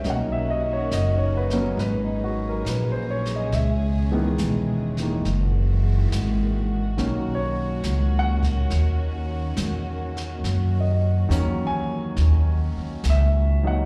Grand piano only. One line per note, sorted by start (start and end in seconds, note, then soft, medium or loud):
0.04 0.58 F#3 medium
0.04 0.58 A#3 medium
0.04 0.58 C#4 medium
0.04 0.58 D#4 medium
0.10 0.36 F#5 medium
0.32 0.62 E5 medium
0.50 0.70 D#5 medium
0.73 0.89 C#5 medium
0.93 1.21 D#5 medium
1.18 1.48 C#5 medium
1.37 1.57 B4 medium
1.52 1.76 F#3 medium
1.52 1.77 A#3 medium
1.52 1.77 B3 medium
1.52 1.77 C#4 medium
1.60 1.76 A#4 medium
1.80 2.08 B4 medium
2.04 2.35 D#4 medium
2.24 2.44 F#4 medium
2.49 2.64 A#4 medium
2.69 2.96 B4 medium
2.92 3.22 C5 medium
3.10 3.31 C#5 medium
3.36 3.50 D#5 medium
3.54 6.09 E5 medium
4.11 4.37 D#3 medium
4.11 4.36 E3 medium
4.11 4.36 G#3 medium
4.11 4.37 B3 medium
4.99 5.24 D#3 medium
4.99 5.23 E3 medium
4.99 5.23 G#3 medium
4.99 5.24 A#3 medium
6.97 9.40 D#3 medium
6.97 9.40 F#3 medium
6.97 9.41 A#3 medium
6.97 9.41 C#4 medium
7.35 8.13 C#5 medium
8.19 8.63 F#5 medium
10.80 11.59 D#5 medium
11.29 12.64 D#3 medium
11.29 12.65 F#3 medium
11.29 12.65 A#3 medium
11.29 12.65 C#4 medium
11.67 11.94 G#5 medium
13.10 13.67 E5 medium
13.63 13.86 D#3 medium
13.63 13.86 F#3 medium
13.63 13.86 A#3 medium
13.63 13.86 D#4 medium
13.63 13.86 F#5 medium